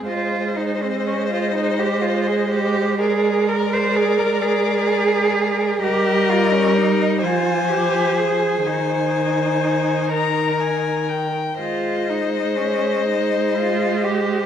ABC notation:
X:1
M:6/8
L:1/16
Q:3/8=41
K:Ab
V:1 name="Violin"
e12 | =d12 | e6 a6 | a6 b2 a2 g2 |
e12 |]
V:2 name="Violin"
c12 | B12 | B6 c6 | c6 B6 |
c12 |]
V:3 name="Cello"
F2 E C D F E G F A G2 | A2 B c A B A6 | G2 F D E2 F2 G2 A2 | E8- E2 z2 |
F2 E2 D2 E2 F2 G2 |]
V:4 name="Viola" clef=bass
A,12- | A,12 | G,6 F,6 | E,12 |
A,12 |]